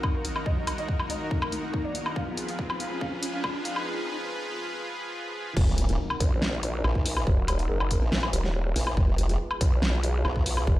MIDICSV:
0, 0, Header, 1, 9, 480
1, 0, Start_track
1, 0, Key_signature, -6, "minor"
1, 0, Tempo, 425532
1, 519, Time_signature, 4, 2, 24, 8
1, 12177, End_track
2, 0, Start_track
2, 0, Title_t, "Supersaw synth"
2, 0, Program_c, 0, 81
2, 0, Note_on_c, 0, 51, 76
2, 0, Note_on_c, 0, 63, 67
2, 0, Note_on_c, 0, 66, 70
2, 0, Note_on_c, 0, 70, 81
2, 2400, Note_off_c, 0, 51, 0
2, 2400, Note_off_c, 0, 63, 0
2, 2400, Note_off_c, 0, 66, 0
2, 2400, Note_off_c, 0, 70, 0
2, 2437, Note_on_c, 0, 65, 74
2, 2438, Note_on_c, 0, 53, 76
2, 2438, Note_on_c, 0, 68, 69
2, 2438, Note_on_c, 0, 71, 85
2, 6240, Note_off_c, 0, 53, 0
2, 6240, Note_off_c, 0, 65, 0
2, 6240, Note_off_c, 0, 68, 0
2, 6240, Note_off_c, 0, 71, 0
2, 6277, Note_on_c, 0, 63, 78
2, 6277, Note_on_c, 0, 70, 89
2, 6278, Note_on_c, 0, 66, 69
2, 10079, Note_off_c, 0, 63, 0
2, 10079, Note_off_c, 0, 70, 0
2, 10080, Note_off_c, 0, 66, 0
2, 10117, Note_on_c, 0, 65, 80
2, 10117, Note_on_c, 0, 68, 73
2, 10118, Note_on_c, 0, 71, 91
2, 12177, Note_off_c, 0, 65, 0
2, 12177, Note_off_c, 0, 68, 0
2, 12177, Note_off_c, 0, 71, 0
2, 12177, End_track
3, 0, Start_track
3, 0, Title_t, "Ambient pad"
3, 0, Program_c, 1, 92
3, 0, Note_on_c, 1, 63, 71
3, 0, Note_on_c, 1, 77, 69
3, 0, Note_on_c, 1, 82, 72
3, 2438, Note_on_c, 1, 65, 72
3, 2814, Note_on_c, 1, 60, 71
3, 3322, Note_off_c, 1, 63, 0
3, 3932, Note_off_c, 1, 82, 0
3, 4358, Note_off_c, 1, 60, 0
3, 4358, Note_off_c, 1, 65, 0
3, 4358, Note_off_c, 1, 77, 0
3, 12177, End_track
4, 0, Start_track
4, 0, Title_t, "Felt piano"
4, 0, Program_c, 2, 0
4, 37, Note_on_c, 2, 63, 65
4, 123, Note_off_c, 2, 63, 0
4, 161, Note_on_c, 2, 70, 87
4, 242, Note_off_c, 2, 70, 0
4, 277, Note_on_c, 2, 63, 59
4, 363, Note_off_c, 2, 63, 0
4, 401, Note_on_c, 2, 63, 61
4, 481, Note_off_c, 2, 63, 0
4, 517, Note_on_c, 2, 75, 93
4, 603, Note_off_c, 2, 75, 0
4, 642, Note_on_c, 2, 63, 63
4, 722, Note_off_c, 2, 63, 0
4, 758, Note_on_c, 2, 63, 64
4, 844, Note_off_c, 2, 63, 0
4, 881, Note_on_c, 2, 75, 85
4, 962, Note_off_c, 2, 75, 0
4, 998, Note_on_c, 2, 63, 61
4, 1084, Note_off_c, 2, 63, 0
4, 1122, Note_on_c, 2, 63, 60
4, 1202, Note_off_c, 2, 63, 0
4, 1238, Note_on_c, 2, 75, 88
4, 1323, Note_off_c, 2, 75, 0
4, 1362, Note_on_c, 2, 63, 61
4, 1442, Note_off_c, 2, 63, 0
4, 1477, Note_on_c, 2, 63, 61
4, 1563, Note_off_c, 2, 63, 0
4, 1601, Note_on_c, 2, 70, 85
4, 1682, Note_off_c, 2, 70, 0
4, 1717, Note_on_c, 2, 63, 61
4, 1803, Note_off_c, 2, 63, 0
4, 1841, Note_on_c, 2, 63, 62
4, 1922, Note_off_c, 2, 63, 0
4, 1957, Note_on_c, 2, 63, 65
4, 2043, Note_off_c, 2, 63, 0
4, 2081, Note_on_c, 2, 74, 84
4, 2162, Note_off_c, 2, 74, 0
4, 2197, Note_on_c, 2, 63, 64
4, 2283, Note_off_c, 2, 63, 0
4, 2322, Note_on_c, 2, 63, 64
4, 2402, Note_off_c, 2, 63, 0
4, 2438, Note_on_c, 2, 77, 90
4, 2523, Note_off_c, 2, 77, 0
4, 2562, Note_on_c, 2, 65, 59
4, 2642, Note_off_c, 2, 65, 0
4, 2678, Note_on_c, 2, 65, 59
4, 2763, Note_off_c, 2, 65, 0
4, 2801, Note_on_c, 2, 77, 81
4, 2881, Note_off_c, 2, 77, 0
4, 2918, Note_on_c, 2, 65, 58
4, 3004, Note_off_c, 2, 65, 0
4, 3042, Note_on_c, 2, 65, 55
4, 3122, Note_off_c, 2, 65, 0
4, 3158, Note_on_c, 2, 77, 84
4, 3244, Note_off_c, 2, 77, 0
4, 3282, Note_on_c, 2, 65, 59
4, 3362, Note_off_c, 2, 65, 0
4, 3397, Note_on_c, 2, 77, 92
4, 3483, Note_off_c, 2, 77, 0
4, 3522, Note_on_c, 2, 65, 60
4, 3602, Note_off_c, 2, 65, 0
4, 3638, Note_on_c, 2, 65, 61
4, 3723, Note_off_c, 2, 65, 0
4, 3761, Note_on_c, 2, 77, 89
4, 3842, Note_off_c, 2, 77, 0
4, 3877, Note_on_c, 2, 65, 62
4, 3963, Note_off_c, 2, 65, 0
4, 4002, Note_on_c, 2, 65, 58
4, 4082, Note_off_c, 2, 65, 0
4, 4118, Note_on_c, 2, 77, 85
4, 4204, Note_off_c, 2, 77, 0
4, 4242, Note_on_c, 2, 65, 61
4, 4322, Note_off_c, 2, 65, 0
4, 12177, End_track
5, 0, Start_track
5, 0, Title_t, "Wobble bass"
5, 0, Program_c, 3, 39
5, 6278, Note_on_c, 3, 27, 92
5, 6622, Note_off_c, 3, 27, 0
5, 6643, Note_on_c, 3, 27, 94
5, 6740, Note_off_c, 3, 27, 0
5, 7719, Note_on_c, 3, 34, 98
5, 8180, Note_off_c, 3, 34, 0
5, 9043, Note_on_c, 3, 34, 98
5, 9380, Note_off_c, 3, 34, 0
5, 9879, Note_on_c, 3, 34, 99
5, 10100, Note_off_c, 3, 34, 0
5, 10118, Note_on_c, 3, 29, 89
5, 10463, Note_off_c, 3, 29, 0
5, 10482, Note_on_c, 3, 29, 95
5, 10580, Note_off_c, 3, 29, 0
5, 11558, Note_on_c, 3, 35, 99
5, 12020, Note_off_c, 3, 35, 0
5, 12177, End_track
6, 0, Start_track
6, 0, Title_t, "Wobble bass"
6, 0, Program_c, 4, 39
6, 6998, Note_on_c, 4, 34, 100
6, 7700, Note_off_c, 4, 34, 0
6, 8198, Note_on_c, 4, 27, 95
6, 8660, Note_off_c, 4, 27, 0
6, 8679, Note_on_c, 4, 30, 93
6, 9023, Note_off_c, 4, 30, 0
6, 9399, Note_on_c, 4, 27, 102
6, 9860, Note_off_c, 4, 27, 0
6, 10838, Note_on_c, 4, 35, 102
6, 11540, Note_off_c, 4, 35, 0
6, 12038, Note_on_c, 4, 29, 94
6, 12177, Note_off_c, 4, 29, 0
6, 12177, End_track
7, 0, Start_track
7, 0, Title_t, "Impact"
7, 0, Program_c, 5, 103
7, 6278, Note_on_c, 5, 60, 78
7, 8198, Note_off_c, 5, 60, 0
7, 12177, End_track
8, 0, Start_track
8, 0, Title_t, "Riser"
8, 0, Program_c, 6, 103
8, 0, Note_on_c, 6, 60, 70
8, 4358, Note_off_c, 6, 60, 0
8, 12177, End_track
9, 0, Start_track
9, 0, Title_t, "Drums"
9, 38, Note_on_c, 9, 36, 91
9, 39, Note_on_c, 9, 77, 47
9, 151, Note_off_c, 9, 36, 0
9, 151, Note_off_c, 9, 77, 0
9, 278, Note_on_c, 9, 42, 74
9, 391, Note_off_c, 9, 42, 0
9, 403, Note_on_c, 9, 77, 50
9, 515, Note_off_c, 9, 77, 0
9, 518, Note_on_c, 9, 36, 92
9, 631, Note_off_c, 9, 36, 0
9, 759, Note_on_c, 9, 42, 76
9, 759, Note_on_c, 9, 77, 54
9, 871, Note_off_c, 9, 42, 0
9, 871, Note_off_c, 9, 77, 0
9, 883, Note_on_c, 9, 42, 38
9, 996, Note_off_c, 9, 42, 0
9, 998, Note_on_c, 9, 36, 91
9, 1111, Note_off_c, 9, 36, 0
9, 1123, Note_on_c, 9, 77, 49
9, 1235, Note_off_c, 9, 77, 0
9, 1239, Note_on_c, 9, 42, 79
9, 1351, Note_off_c, 9, 42, 0
9, 1478, Note_on_c, 9, 36, 97
9, 1591, Note_off_c, 9, 36, 0
9, 1602, Note_on_c, 9, 77, 71
9, 1715, Note_off_c, 9, 77, 0
9, 1718, Note_on_c, 9, 42, 80
9, 1831, Note_off_c, 9, 42, 0
9, 1958, Note_on_c, 9, 36, 93
9, 2071, Note_off_c, 9, 36, 0
9, 2198, Note_on_c, 9, 42, 80
9, 2311, Note_off_c, 9, 42, 0
9, 2322, Note_on_c, 9, 77, 48
9, 2435, Note_off_c, 9, 77, 0
9, 2438, Note_on_c, 9, 36, 102
9, 2551, Note_off_c, 9, 36, 0
9, 2678, Note_on_c, 9, 42, 77
9, 2791, Note_off_c, 9, 42, 0
9, 2803, Note_on_c, 9, 42, 39
9, 2915, Note_off_c, 9, 42, 0
9, 2918, Note_on_c, 9, 36, 102
9, 3031, Note_off_c, 9, 36, 0
9, 3043, Note_on_c, 9, 77, 52
9, 3156, Note_off_c, 9, 77, 0
9, 3159, Note_on_c, 9, 42, 79
9, 3272, Note_off_c, 9, 42, 0
9, 3398, Note_on_c, 9, 36, 98
9, 3511, Note_off_c, 9, 36, 0
9, 3639, Note_on_c, 9, 42, 85
9, 3751, Note_off_c, 9, 42, 0
9, 3878, Note_on_c, 9, 36, 103
9, 3879, Note_on_c, 9, 77, 50
9, 3991, Note_off_c, 9, 36, 0
9, 3992, Note_off_c, 9, 77, 0
9, 4119, Note_on_c, 9, 42, 81
9, 4231, Note_off_c, 9, 42, 0
9, 4243, Note_on_c, 9, 77, 50
9, 4356, Note_off_c, 9, 77, 0
9, 6278, Note_on_c, 9, 36, 126
9, 6279, Note_on_c, 9, 49, 100
9, 6391, Note_off_c, 9, 36, 0
9, 6391, Note_off_c, 9, 49, 0
9, 6519, Note_on_c, 9, 42, 81
9, 6632, Note_off_c, 9, 42, 0
9, 6643, Note_on_c, 9, 42, 39
9, 6756, Note_off_c, 9, 42, 0
9, 6883, Note_on_c, 9, 77, 54
9, 6996, Note_off_c, 9, 77, 0
9, 6998, Note_on_c, 9, 36, 112
9, 6999, Note_on_c, 9, 42, 83
9, 7111, Note_off_c, 9, 36, 0
9, 7112, Note_off_c, 9, 42, 0
9, 7239, Note_on_c, 9, 38, 115
9, 7352, Note_off_c, 9, 38, 0
9, 7479, Note_on_c, 9, 42, 84
9, 7592, Note_off_c, 9, 42, 0
9, 7719, Note_on_c, 9, 77, 49
9, 7832, Note_off_c, 9, 77, 0
9, 7843, Note_on_c, 9, 36, 62
9, 7955, Note_off_c, 9, 36, 0
9, 7959, Note_on_c, 9, 46, 98
9, 8072, Note_off_c, 9, 46, 0
9, 8083, Note_on_c, 9, 77, 53
9, 8196, Note_off_c, 9, 77, 0
9, 8199, Note_on_c, 9, 36, 118
9, 8311, Note_off_c, 9, 36, 0
9, 8439, Note_on_c, 9, 42, 83
9, 8439, Note_on_c, 9, 77, 60
9, 8552, Note_off_c, 9, 42, 0
9, 8552, Note_off_c, 9, 77, 0
9, 8563, Note_on_c, 9, 42, 38
9, 8676, Note_off_c, 9, 42, 0
9, 8803, Note_on_c, 9, 77, 55
9, 8916, Note_off_c, 9, 77, 0
9, 8919, Note_on_c, 9, 36, 66
9, 8919, Note_on_c, 9, 42, 85
9, 9031, Note_off_c, 9, 36, 0
9, 9032, Note_off_c, 9, 42, 0
9, 9159, Note_on_c, 9, 38, 117
9, 9272, Note_off_c, 9, 38, 0
9, 9283, Note_on_c, 9, 77, 77
9, 9396, Note_off_c, 9, 77, 0
9, 9399, Note_on_c, 9, 42, 90
9, 9512, Note_off_c, 9, 42, 0
9, 9523, Note_on_c, 9, 38, 36
9, 9636, Note_off_c, 9, 38, 0
9, 9879, Note_on_c, 9, 46, 92
9, 9992, Note_off_c, 9, 46, 0
9, 10003, Note_on_c, 9, 77, 51
9, 10116, Note_off_c, 9, 77, 0
9, 10118, Note_on_c, 9, 36, 124
9, 10231, Note_off_c, 9, 36, 0
9, 10359, Note_on_c, 9, 42, 78
9, 10472, Note_off_c, 9, 42, 0
9, 10483, Note_on_c, 9, 42, 39
9, 10596, Note_off_c, 9, 42, 0
9, 10723, Note_on_c, 9, 77, 53
9, 10836, Note_off_c, 9, 77, 0
9, 10838, Note_on_c, 9, 36, 112
9, 10839, Note_on_c, 9, 42, 83
9, 10951, Note_off_c, 9, 36, 0
9, 10952, Note_off_c, 9, 42, 0
9, 11079, Note_on_c, 9, 38, 124
9, 11192, Note_off_c, 9, 38, 0
9, 11319, Note_on_c, 9, 42, 82
9, 11432, Note_off_c, 9, 42, 0
9, 11560, Note_on_c, 9, 77, 50
9, 11672, Note_off_c, 9, 77, 0
9, 11683, Note_on_c, 9, 36, 65
9, 11795, Note_off_c, 9, 36, 0
9, 11799, Note_on_c, 9, 46, 88
9, 11912, Note_off_c, 9, 46, 0
9, 11924, Note_on_c, 9, 77, 51
9, 12036, Note_off_c, 9, 77, 0
9, 12039, Note_on_c, 9, 36, 127
9, 12151, Note_off_c, 9, 36, 0
9, 12177, End_track
0, 0, End_of_file